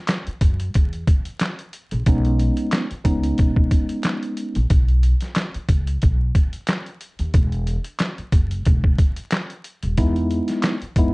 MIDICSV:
0, 0, Header, 1, 5, 480
1, 0, Start_track
1, 0, Key_signature, 5, "major"
1, 0, Tempo, 659341
1, 1503, Time_signature, 4, 2, 24, 8
1, 8109, End_track
2, 0, Start_track
2, 0, Title_t, "Tine electric piano"
2, 0, Program_c, 0, 4
2, 1511, Note_on_c, 0, 56, 92
2, 1512, Note_on_c, 0, 59, 91
2, 1513, Note_on_c, 0, 61, 90
2, 1515, Note_on_c, 0, 63, 99
2, 2066, Note_off_c, 0, 56, 0
2, 2067, Note_off_c, 0, 59, 0
2, 2067, Note_off_c, 0, 61, 0
2, 2068, Note_off_c, 0, 63, 0
2, 2215, Note_on_c, 0, 56, 88
2, 2216, Note_on_c, 0, 59, 82
2, 2217, Note_on_c, 0, 61, 81
2, 2219, Note_on_c, 0, 63, 107
2, 3333, Note_off_c, 0, 56, 0
2, 3333, Note_off_c, 0, 59, 0
2, 3334, Note_off_c, 0, 61, 0
2, 3335, Note_off_c, 0, 63, 0
2, 7263, Note_on_c, 0, 56, 95
2, 7265, Note_on_c, 0, 59, 91
2, 7266, Note_on_c, 0, 63, 91
2, 7267, Note_on_c, 0, 64, 98
2, 7823, Note_off_c, 0, 56, 0
2, 7823, Note_off_c, 0, 59, 0
2, 7824, Note_off_c, 0, 63, 0
2, 7824, Note_off_c, 0, 64, 0
2, 7992, Note_on_c, 0, 56, 91
2, 7993, Note_on_c, 0, 59, 91
2, 7995, Note_on_c, 0, 63, 83
2, 7996, Note_on_c, 0, 64, 97
2, 8109, Note_off_c, 0, 56, 0
2, 8109, Note_off_c, 0, 59, 0
2, 8109, Note_off_c, 0, 63, 0
2, 8109, Note_off_c, 0, 64, 0
2, 8109, End_track
3, 0, Start_track
3, 0, Title_t, "Upright bass"
3, 0, Program_c, 1, 32
3, 302, Note_on_c, 1, 42, 97
3, 497, Note_off_c, 1, 42, 0
3, 551, Note_on_c, 1, 40, 91
3, 742, Note_off_c, 1, 40, 0
3, 1399, Note_on_c, 1, 34, 82
3, 1485, Note_off_c, 1, 34, 0
3, 1505, Note_on_c, 1, 35, 108
3, 1806, Note_off_c, 1, 35, 0
3, 2221, Note_on_c, 1, 37, 96
3, 2417, Note_off_c, 1, 37, 0
3, 2471, Note_on_c, 1, 35, 89
3, 2662, Note_off_c, 1, 35, 0
3, 3319, Note_on_c, 1, 34, 84
3, 3405, Note_off_c, 1, 34, 0
3, 3425, Note_on_c, 1, 35, 100
3, 3726, Note_off_c, 1, 35, 0
3, 4142, Note_on_c, 1, 37, 94
3, 4337, Note_off_c, 1, 37, 0
3, 4391, Note_on_c, 1, 35, 93
3, 4582, Note_off_c, 1, 35, 0
3, 5238, Note_on_c, 1, 39, 88
3, 5325, Note_off_c, 1, 39, 0
3, 5346, Note_on_c, 1, 28, 107
3, 5646, Note_off_c, 1, 28, 0
3, 6062, Note_on_c, 1, 30, 98
3, 6257, Note_off_c, 1, 30, 0
3, 6310, Note_on_c, 1, 28, 98
3, 6502, Note_off_c, 1, 28, 0
3, 7158, Note_on_c, 1, 27, 86
3, 7245, Note_off_c, 1, 27, 0
3, 7265, Note_on_c, 1, 40, 100
3, 7565, Note_off_c, 1, 40, 0
3, 7981, Note_on_c, 1, 42, 98
3, 8109, Note_off_c, 1, 42, 0
3, 8109, End_track
4, 0, Start_track
4, 0, Title_t, "Muted upright bass strokes"
4, 199, Note_on_c, 9, 29, 49
4, 272, Note_off_c, 9, 29, 0
4, 2118, Note_on_c, 9, 29, 47
4, 2191, Note_off_c, 9, 29, 0
4, 4038, Note_on_c, 9, 29, 48
4, 4111, Note_off_c, 9, 29, 0
4, 5958, Note_on_c, 9, 29, 46
4, 6031, Note_off_c, 9, 29, 0
4, 7879, Note_on_c, 9, 29, 47
4, 7952, Note_off_c, 9, 29, 0
4, 8109, End_track
5, 0, Start_track
5, 0, Title_t, "Drums"
5, 57, Note_on_c, 9, 42, 94
5, 61, Note_on_c, 9, 39, 87
5, 65, Note_on_c, 9, 38, 110
5, 130, Note_off_c, 9, 42, 0
5, 134, Note_off_c, 9, 39, 0
5, 138, Note_off_c, 9, 38, 0
5, 195, Note_on_c, 9, 42, 35
5, 268, Note_off_c, 9, 42, 0
5, 299, Note_on_c, 9, 42, 94
5, 300, Note_on_c, 9, 36, 97
5, 372, Note_off_c, 9, 36, 0
5, 372, Note_off_c, 9, 42, 0
5, 435, Note_on_c, 9, 42, 58
5, 507, Note_off_c, 9, 42, 0
5, 540, Note_on_c, 9, 42, 77
5, 548, Note_on_c, 9, 36, 96
5, 613, Note_off_c, 9, 42, 0
5, 621, Note_off_c, 9, 36, 0
5, 676, Note_on_c, 9, 42, 35
5, 749, Note_off_c, 9, 42, 0
5, 782, Note_on_c, 9, 36, 102
5, 782, Note_on_c, 9, 42, 83
5, 855, Note_off_c, 9, 36, 0
5, 855, Note_off_c, 9, 42, 0
5, 913, Note_on_c, 9, 42, 53
5, 985, Note_off_c, 9, 42, 0
5, 1016, Note_on_c, 9, 42, 98
5, 1024, Note_on_c, 9, 39, 86
5, 1028, Note_on_c, 9, 38, 107
5, 1089, Note_off_c, 9, 42, 0
5, 1097, Note_off_c, 9, 39, 0
5, 1101, Note_off_c, 9, 38, 0
5, 1157, Note_on_c, 9, 42, 38
5, 1230, Note_off_c, 9, 42, 0
5, 1260, Note_on_c, 9, 42, 59
5, 1333, Note_off_c, 9, 42, 0
5, 1393, Note_on_c, 9, 42, 51
5, 1466, Note_off_c, 9, 42, 0
5, 1501, Note_on_c, 9, 42, 96
5, 1504, Note_on_c, 9, 36, 116
5, 1574, Note_off_c, 9, 42, 0
5, 1576, Note_off_c, 9, 36, 0
5, 1636, Note_on_c, 9, 42, 36
5, 1709, Note_off_c, 9, 42, 0
5, 1743, Note_on_c, 9, 42, 60
5, 1816, Note_off_c, 9, 42, 0
5, 1870, Note_on_c, 9, 42, 59
5, 1942, Note_off_c, 9, 42, 0
5, 1978, Note_on_c, 9, 42, 93
5, 1982, Note_on_c, 9, 39, 86
5, 1986, Note_on_c, 9, 38, 108
5, 2051, Note_off_c, 9, 42, 0
5, 2055, Note_off_c, 9, 39, 0
5, 2058, Note_off_c, 9, 38, 0
5, 2116, Note_on_c, 9, 42, 36
5, 2189, Note_off_c, 9, 42, 0
5, 2219, Note_on_c, 9, 42, 96
5, 2220, Note_on_c, 9, 36, 97
5, 2292, Note_off_c, 9, 36, 0
5, 2292, Note_off_c, 9, 42, 0
5, 2355, Note_on_c, 9, 42, 59
5, 2428, Note_off_c, 9, 42, 0
5, 2460, Note_on_c, 9, 42, 76
5, 2469, Note_on_c, 9, 36, 97
5, 2533, Note_off_c, 9, 42, 0
5, 2542, Note_off_c, 9, 36, 0
5, 2595, Note_on_c, 9, 36, 97
5, 2668, Note_off_c, 9, 36, 0
5, 2702, Note_on_c, 9, 36, 97
5, 2702, Note_on_c, 9, 42, 81
5, 2775, Note_off_c, 9, 36, 0
5, 2775, Note_off_c, 9, 42, 0
5, 2833, Note_on_c, 9, 42, 54
5, 2906, Note_off_c, 9, 42, 0
5, 2935, Note_on_c, 9, 42, 95
5, 2943, Note_on_c, 9, 39, 85
5, 2947, Note_on_c, 9, 38, 108
5, 3008, Note_off_c, 9, 42, 0
5, 3016, Note_off_c, 9, 39, 0
5, 3020, Note_off_c, 9, 38, 0
5, 3077, Note_on_c, 9, 42, 37
5, 3150, Note_off_c, 9, 42, 0
5, 3181, Note_on_c, 9, 42, 60
5, 3253, Note_off_c, 9, 42, 0
5, 3313, Note_on_c, 9, 42, 53
5, 3386, Note_off_c, 9, 42, 0
5, 3421, Note_on_c, 9, 42, 98
5, 3424, Note_on_c, 9, 36, 113
5, 3494, Note_off_c, 9, 42, 0
5, 3497, Note_off_c, 9, 36, 0
5, 3556, Note_on_c, 9, 42, 37
5, 3629, Note_off_c, 9, 42, 0
5, 3663, Note_on_c, 9, 42, 60
5, 3736, Note_off_c, 9, 42, 0
5, 3790, Note_on_c, 9, 42, 59
5, 3802, Note_on_c, 9, 38, 36
5, 3863, Note_off_c, 9, 42, 0
5, 3875, Note_off_c, 9, 38, 0
5, 3898, Note_on_c, 9, 42, 94
5, 3902, Note_on_c, 9, 39, 88
5, 3905, Note_on_c, 9, 38, 110
5, 3971, Note_off_c, 9, 42, 0
5, 3974, Note_off_c, 9, 39, 0
5, 3978, Note_off_c, 9, 38, 0
5, 4037, Note_on_c, 9, 42, 37
5, 4109, Note_off_c, 9, 42, 0
5, 4140, Note_on_c, 9, 36, 100
5, 4140, Note_on_c, 9, 42, 94
5, 4212, Note_off_c, 9, 42, 0
5, 4213, Note_off_c, 9, 36, 0
5, 4275, Note_on_c, 9, 42, 57
5, 4348, Note_off_c, 9, 42, 0
5, 4380, Note_on_c, 9, 42, 78
5, 4389, Note_on_c, 9, 36, 94
5, 4453, Note_off_c, 9, 42, 0
5, 4462, Note_off_c, 9, 36, 0
5, 4622, Note_on_c, 9, 36, 99
5, 4622, Note_on_c, 9, 42, 82
5, 4695, Note_off_c, 9, 36, 0
5, 4695, Note_off_c, 9, 42, 0
5, 4753, Note_on_c, 9, 42, 55
5, 4826, Note_off_c, 9, 42, 0
5, 4855, Note_on_c, 9, 42, 98
5, 4864, Note_on_c, 9, 39, 85
5, 4867, Note_on_c, 9, 38, 109
5, 4928, Note_off_c, 9, 42, 0
5, 4936, Note_off_c, 9, 39, 0
5, 4940, Note_off_c, 9, 38, 0
5, 4997, Note_on_c, 9, 42, 37
5, 5070, Note_off_c, 9, 42, 0
5, 5102, Note_on_c, 9, 42, 61
5, 5174, Note_off_c, 9, 42, 0
5, 5234, Note_on_c, 9, 42, 51
5, 5307, Note_off_c, 9, 42, 0
5, 5342, Note_on_c, 9, 42, 99
5, 5344, Note_on_c, 9, 36, 117
5, 5415, Note_off_c, 9, 42, 0
5, 5417, Note_off_c, 9, 36, 0
5, 5477, Note_on_c, 9, 42, 35
5, 5549, Note_off_c, 9, 42, 0
5, 5583, Note_on_c, 9, 42, 61
5, 5656, Note_off_c, 9, 42, 0
5, 5710, Note_on_c, 9, 42, 58
5, 5783, Note_off_c, 9, 42, 0
5, 5818, Note_on_c, 9, 42, 93
5, 5822, Note_on_c, 9, 39, 90
5, 5826, Note_on_c, 9, 38, 109
5, 5891, Note_off_c, 9, 42, 0
5, 5895, Note_off_c, 9, 39, 0
5, 5898, Note_off_c, 9, 38, 0
5, 5956, Note_on_c, 9, 42, 35
5, 6029, Note_off_c, 9, 42, 0
5, 6060, Note_on_c, 9, 36, 99
5, 6060, Note_on_c, 9, 42, 91
5, 6132, Note_off_c, 9, 36, 0
5, 6132, Note_off_c, 9, 42, 0
5, 6195, Note_on_c, 9, 42, 59
5, 6268, Note_off_c, 9, 42, 0
5, 6301, Note_on_c, 9, 42, 81
5, 6309, Note_on_c, 9, 36, 96
5, 6373, Note_off_c, 9, 42, 0
5, 6381, Note_off_c, 9, 36, 0
5, 6435, Note_on_c, 9, 36, 97
5, 6508, Note_off_c, 9, 36, 0
5, 6541, Note_on_c, 9, 42, 81
5, 6542, Note_on_c, 9, 36, 99
5, 6614, Note_off_c, 9, 36, 0
5, 6614, Note_off_c, 9, 42, 0
5, 6672, Note_on_c, 9, 42, 55
5, 6745, Note_off_c, 9, 42, 0
5, 6775, Note_on_c, 9, 42, 101
5, 6784, Note_on_c, 9, 39, 90
5, 6788, Note_on_c, 9, 38, 111
5, 6848, Note_off_c, 9, 42, 0
5, 6857, Note_off_c, 9, 39, 0
5, 6860, Note_off_c, 9, 38, 0
5, 6916, Note_on_c, 9, 42, 36
5, 6989, Note_off_c, 9, 42, 0
5, 7020, Note_on_c, 9, 42, 59
5, 7093, Note_off_c, 9, 42, 0
5, 7153, Note_on_c, 9, 42, 53
5, 7226, Note_off_c, 9, 42, 0
5, 7261, Note_on_c, 9, 42, 97
5, 7263, Note_on_c, 9, 36, 111
5, 7334, Note_off_c, 9, 42, 0
5, 7336, Note_off_c, 9, 36, 0
5, 7396, Note_on_c, 9, 42, 35
5, 7469, Note_off_c, 9, 42, 0
5, 7503, Note_on_c, 9, 42, 59
5, 7576, Note_off_c, 9, 42, 0
5, 7629, Note_on_c, 9, 42, 58
5, 7641, Note_on_c, 9, 38, 36
5, 7702, Note_off_c, 9, 42, 0
5, 7714, Note_off_c, 9, 38, 0
5, 7737, Note_on_c, 9, 42, 94
5, 7741, Note_on_c, 9, 39, 88
5, 7745, Note_on_c, 9, 38, 107
5, 7810, Note_off_c, 9, 42, 0
5, 7814, Note_off_c, 9, 39, 0
5, 7818, Note_off_c, 9, 38, 0
5, 7875, Note_on_c, 9, 42, 37
5, 7948, Note_off_c, 9, 42, 0
5, 7978, Note_on_c, 9, 42, 92
5, 7979, Note_on_c, 9, 36, 95
5, 8051, Note_off_c, 9, 42, 0
5, 8052, Note_off_c, 9, 36, 0
5, 8109, End_track
0, 0, End_of_file